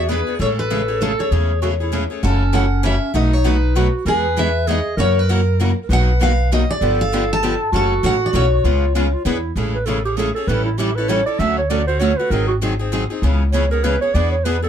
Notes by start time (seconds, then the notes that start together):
Already playing: E2 F#4
0.09 E3 B3 D4 G#4 B4
0.27 B3 D4 G#4
0.39 A1 C#3 E3 G#3 A3 C#4 E4 G#4 A4 C#5
0.59 B4
0.70 C#3 E3 G#3 A3 C#4 E4 G#4 A4
0.88 A3 C#4 G#4
1.01 C#3 E3 G#3 A3 C#4 E4 G#4 A4
1.19 A3 C#4 G#4 C#5
1.31 E2 C#3 E3 G#3 A3 C#4 E4 G#4 A4
1.62 C#3 E3 G#3 A3 C#4 E4 F#4 G#4 A4
1.80 A3 C#4 E4 G#4
1.92 C#3 E3 G#3 A3 C#4 E4 G#4 A4
2.10 A3 C#4 G#4
2.23 F#1 C#3 E3 F#3 A3 C#4 E4 F#4 A4
2.53 C#3 E3 F#3 A3 C#4 E4 F#4 A4 F#5
2.83 C#3 E3 F#3 A3 C#4 E4 F#4 A4 E5
3.14 B1 B2 F#3 A3 D#4 F#4 B4 D#5
3.33 C#5
3.44 B2 F#3 A3 D#4 F#4 B4
3.75 B2 F#3 A3 D#4 F#4 B4
4.05 E2 E3 G#3 B3 D#4 G#4 B4
4.37 E3 G#3 B3 D#4 G#4 E5
4.68 E3 G#3 B3 D#4 G#4 D#5
4.97 F#2 C#3 E3 F#3 A#3 C#4 E4 F#4 A#4 C#5
5.19 B4
5.29 C#3 E3 F#3 A#3 C#4 E4 F#4 A#4
5.60 C#3 E3 F#3 A#3 C#4 E4 F#4 A#4
5.83 A#4
5.89 B1 B2 D#3 F#3 A#3 B3 D#4 F#4 A#4 B4
5.93 F#5
6.20 B2 D#3 F#3 A#3 B3 D#4 F#4 A#4 F5
6.52 B2 D#3 F#3 A#3 B3 D#4 F#4 A#4 D#5
6.71 D5
6.81 G1 D3 F3 B3 D4 G4 A4
7.01 F5
7.12 D3 F3 B3 D4 G4
7.33 A5
7.43 D3 F3 B3 D4 G4
7.72 F#1 C#3 E3 F#3 A3 C#4 E4 F#4 A4
8.03 A1 C#3 E3 F#3 A3 C#4 E4 F#4 A4 F#5
8.26 D5
8.33 B1 C#3 E3 F#3 A3 C#4 E4 F#4 A4 C#5
8.64 C#2 C#3 G#3 B3 F4 G#4
8.95 C#3 G#3 B3 C#4 F4 G#4
9.13 F4
9.25 E2 E3 B3 D4 E4 G#4 B4
9.55 A1 C#3 E3 G#3 A3 C#4 E4 G#4 A4
9.75 B4
9.86 C#3 E3 G#3 A3 C#4 E4 G#4 A4
10.05 A3 C#4 G4 G#4
10.17 C#3 E3 G#3 A3 C#4 E4 G#4 A4
10.35 A3 C#4 G#4 A4
10.47 A1 E3 G3 C#4 E4 A4 B4
10.65 E4
10.78 E3 G3 C#4 E4 G4 A4
10.96 C#4 E4 A4 B4
11.09 E3 G3 C#4 E4 A4 C#5
11.26 C#4 E4 A4 D5
11.39 D2 D3 F#3 A3 C#4 F#4 A4 E5
11.58 C#5
11.69 D3 F#3 A3 C#4 F#4 A4 D5
11.87 A3 C#4 F#4 C5
12.00 D3 F#3 A3 C#4 F#4 A4 C#5
12.17 A3 C#4 F#4 B4
12.30 G#1 D#3 F#3 C4 D#4 G#4 A#4
12.48 F#4
12.62 D#3 F#3 C4 D#4 G#4
12.79 C4 D#4 G#4
12.92 D#3 F#3 C4 D#4 G#4
13.10 C4 D#4 G#4
13.22 C#2 C#3 E3 G#3 B3 C#4 E4 G#4
13.52 C#3 E3 G#3 B3 C#4 E4 G#4 C#5
13.71 B3 C#4 G#4 A#4
13.83 C#3 E3 G#3 B3 C#4 E4 G#4 B4
14.01 B3 C#4 G#4 C#5
14.14 E2 E3 B3 D4 G#4 B4 D5
14.32 C#5
14.44 E3 B3 D4 G#4 B4
14.63 B3 D4 G#4 A4